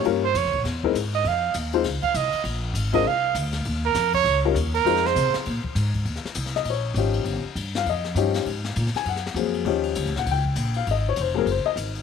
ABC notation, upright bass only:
X:1
M:4/4
L:1/8
Q:"Swing" 1/4=200
K:Ebmix
V:1 name="Upright bass" clef=bass
G,,2 (3F,, D,, B,,, =E,,2 ^G,,2 | F,,2 E,,2 D,, z C,, z | B,,,2 A,,,2 C,,2 =D,,2 | E,,2 F,,2 D,,2 E,,2 |
F,,2 C, z B,, z A,,2 | E,, z C,,2 B,,,2 A,,,2 | G,,, z G,,2 F,,2 G,,2 | A,,2 B,, z _G,,2 F,,2 |
E,,2 (3=D,, _D,, B,,, D,,2 B,,,2 | A,,,2 F,,,2 _G,,, z A,,,2 |]